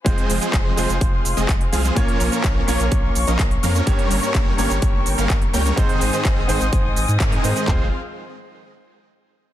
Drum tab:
HH |xxoxx-oxx-oxxxox|xxoxx-oxx-oxxxox|xxoxx-oxx-oxxxox|xxoxx-oxx-oxxxox|
SH |x-xxx-xxx-xxx-xx|x-xxx-xxx-xxx-xx|x-xxx-xxx-xxx-xx|x-xxx-xxx-xxx-xx|
CP |----x-------x---|----x-------x---|----x-------x---|----x-------x---|
FT |----------------|----------------|----------------|----------------|
BD |o---o---o---o---|o---o---o---o---|o---o---o---o---|o---o---o---o---|

HH |----------------|
SH |----------------|
CP |x---------------|
FT |o---------------|
BD |o---------------|